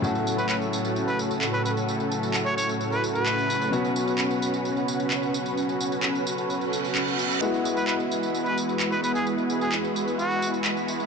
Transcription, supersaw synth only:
\new Staff \with { instrumentName = "Supersaw synth" } { \time 4/4 \key e \major \tempo 4 = 130 <a, cis' fis' a'>1~ | <a, cis' fis' a'>1 | <cis' fis' b'>1~ | <cis' fis' b'>1 |
<gis b e' fis' b'>1~ | <gis b e' fis' b'>1 | }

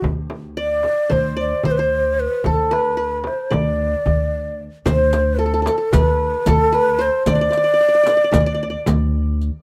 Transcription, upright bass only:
\new Staff \with { instrumentName = "Upright bass" } { \clef bass \time 9/8 \tempo 4. = 75 d,2 d,4 d,4. | d,2 d,4 d,4. | d,2 d,4 d,4. | d,8 r4. d,4 d,4. | }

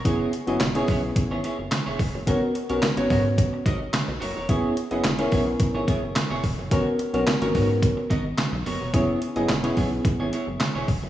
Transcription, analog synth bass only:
\new Staff \with { instrumentName = "Analog synth bass" } { \clef bass \time 4/4 \key gis \minor \tempo 4 = 108 fis,,8 r16 fis,,16 e,,8 b,,8 r16 gis,,16 r16 fis,,16 r16 e,,16 e,,16 fis,,16 | gis,,16 r8 b,,16 r16 gis,,16 gis,8. r16 gis,,8 r16 b,,16 fis,,16 e,,16 | fis,,8 r16 fis,,16 e,,8 b,,8 r16 gis,,16 r16 fis,,16 r16 e,,16 e,,16 fis,,16 | gis,,16 r8 b,,16 r16 gis,,16 gis,8. r16 gis,,8 r16 b,,16 fis,,16 e,,16 |
fis,,8 r16 fis,,16 e,,8 b,,8 r16 gis,,16 r16 fis,,16 r16 e,,16 e,,16 fis,,16 | }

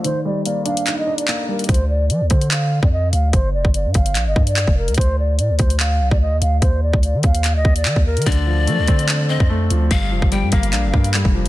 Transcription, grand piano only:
\new Staff \with { instrumentName = "Grand piano" } { \time 4/4 \key d \phrygian \tempo 4 = 146 ees8 g8 bes8 d'8 ees'8 d'8 bes8 g8 | r1 | r1 | r1 |
r1 | d8 f8 a8 c'8 d'8 c'8 a8 f8 | g,8 f8 g8 bes8 d'8 bes8 g8 f8 | }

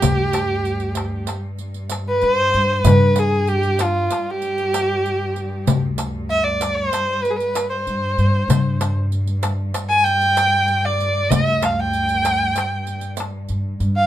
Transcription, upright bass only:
\new Staff \with { instrumentName = "Upright bass" } { \clef bass \time 9/8 \tempo 4. = 64 d,2 r4. g,8 g,8 | g,2 r2 r8 | d,2 r4. g,8 g,8 | g,2 r2 r8 |
d,2 r4. g,8 g,8 | }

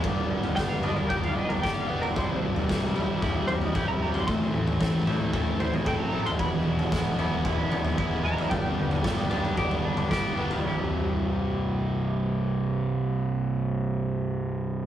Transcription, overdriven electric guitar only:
\new Staff \with { instrumentName = "Overdriven electric guitar" } { \time 4/4 \key c \major \tempo 4 = 113 <g, d g b d' g'>4 <g b d' g'>8 <g b d' g'>8 <g, d g b d' g'>4 <g b d' g'>8 <g b d' g'>8 | <c, g, c g e'>4 <g, c g e'>8 <c g e'>8 <c, g, c g e'>4 <g, c g e'>8 <c g e'>8 | <a, e a c' e' a'>4 <a c' e' a'>8 <a c' e' a'>8 <a, e a c' e' a'>4 <a c' e' a'>8 <a c' e' a'>8 | <e, b, e gis b e'>4 <e gis b e'>8 <e gis b e'>8 <e, b, e gis b e'>4 <e gis b e'>8 <e gis b e'>8 |
<g, d g b d' g'>4 <g b d' g'>8 <g b d' g'>8 <g, d g b d' g'>4 <g b d' g'>8 <g b d' g'>8 | <c, g, c>1~ | <c, g, c>1 | }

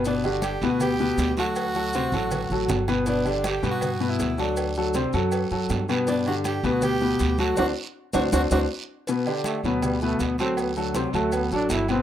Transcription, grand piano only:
\new Staff \with { instrumentName = "Grand piano" } { \time 4/4 \key g \major \tempo 4 = 160 <b, b b'>8 <d d' g'>4 <b, b b'>4 <b, b b'>4 <fis fis' a'>8~ | <fis fis' a'>8 <fis fis' a'>8 <c c' c''>8 <fis fis' a'>4 <fis fis' a'>4 <b, b b'>8 | <b, b b'>8 <d d' g'>4 <b, b b'>4 <b, b b'>4 <fis fis' a'>8~ | <fis fis' a'>8 <fis fis' a'>8 <c c' c''>8 <fis fis' a'>4 <fis fis' a'>4 <b, b b'>8 |
<b, b b'>8 <d d' g'>4 <b, b b'>4 <b, b b'>4 <fis fis' a'>8 | <c' d' fis'>8 r4 <c' d' fis'>8 <c' d' fis'>8 <c' d' fis'>8 r4 | <b, b b'>8 <d d' g'>4 <b, b b'>4 <b, b b'>4 <fis fis' a'>8~ | <fis fis' a'>8 <fis fis' a'>8 <c c' c''>8 <fis fis' a'>4 <fis fis' a'>4 <b, b b'>8 | }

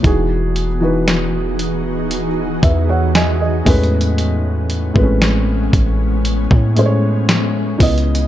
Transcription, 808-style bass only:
\new Staff \with { instrumentName = "808-style bass" } { \clef bass \time 4/4 \key a \lydian \tempo 4 = 58 e,,4.~ e,,16 dis,,8. e,4 e,8~ | e,8. a,,8. a,,8. a,4~ a,16 cis,8 | }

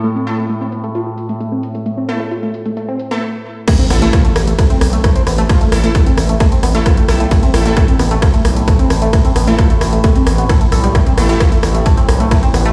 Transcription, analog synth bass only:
\new Staff \with { instrumentName = "Analog synth bass" } { \clef bass \time 4/4 \key a \minor \tempo 4 = 132 r1 | r1 | r8 a,,8 r8 a,,8 r8 b,,8 r8 a,,8 | r8 a,,8 r8 a,,8 r8 a,,8 r8 b,,8 |
r8 a,,8 r8 a,,8 r8 b,,8 r8 a,,8 | r8 a,,8 r8 a,,8 r8 a,,8 r8 b,,8 | r8 a,,8 r8 a,,8 r8 b,,8 r8 a,,8 | }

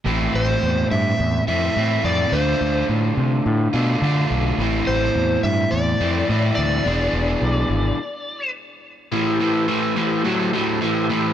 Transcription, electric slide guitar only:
\new Staff \with { instrumentName = "Electric slide guitar" } { \time 4/4 \key a \minor \tempo 4 = 106 r8 c''4 e''4 e''4 d''8 | c''4 r2. | r8 c''4 e''8 d''4. d''8~ | d''2. r4 |
r1 | }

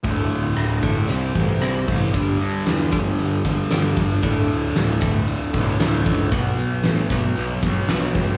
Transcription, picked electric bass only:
\new Staff \with { instrumentName = "Picked electric bass" } { \clef bass \time 4/4 \key d \major \tempo 4 = 115 d,,8 d,,8 d,,8 d,,8 c,8 a,,8 c,8 a,,8 | g,,8 g,8 e,8 g,,8 g,,8 g,,8 g,,8 g,,8 | d,,8 d,,8 d,,8 d,,8 d,,8 b,,8 d,,8 cis,8 | b,,8 b,,8 a,,8 b,,8 b,,8 b,,8 b,,8 cis,8 | }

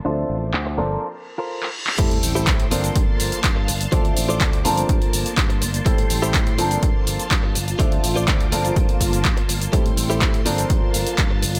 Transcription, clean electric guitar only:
\new Staff \with { instrumentName = "Clean electric guitar" } { \time 4/4 \key g \dorian \tempo 4 = 124 <d' f' c''>8 r4 <f' a' bes' c''>8 r8. <f' a' bes' c''>8. r8 | <e' g' a' c''>16 r8 <e' g' a' c''>8. <f' a' bes' c''>4. r4 | <f' a' c'' d''>16 r8 <f' a' c'' d''>8. <f' a' bes' c''>4. r4 | <e' g' a' c''>16 r8 <e' g' a' c''>8. <f' a' bes' c''>4. r4 |
<f' a' c'' d''>16 r8 <f' a' c'' d''>8. <f' a' bes' c''>4. r4 | <e' g' a' c''>16 r8 <e' g' a' c''>8. <f' a' bes' c''>4. r4 | }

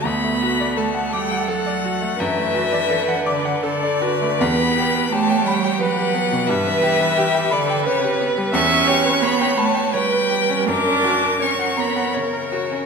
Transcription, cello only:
\new Staff \with { instrumentName = "Cello" } { \clef bass \time 3/4 \key d \major \tempo 4 = 85 b4 a8 g8 fis4 | e4. d8 d4 | b4 a8 g8 fis4 | e4. d8 cis8 r8 |
\key fis \phrygian cis'4 b8 a8 g4 | d'4 cis'8 b8 cis4 | }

